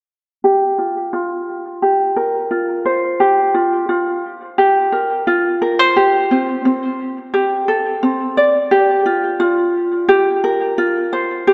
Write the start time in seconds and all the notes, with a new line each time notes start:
0.44 G4
0.78 F4
1.13 F4
1.82 G4
2.16 A#4
2.51 F4
2.85 C5
3.20 G4
3.54 F4
3.89 F4
4.58 G4
4.92 A#4
5.27 F4
5.62 A#4
5.79 C5
5.96 G4
6.31 C4
6.65 C4
7.34 G4
7.68 A4
8.03 C4
8.37 D5
8.71 G4
9.06 F4
9.40 F4
10.09 G4
10.44 A#4
10.78 F4
11.13 C5
11.47 G4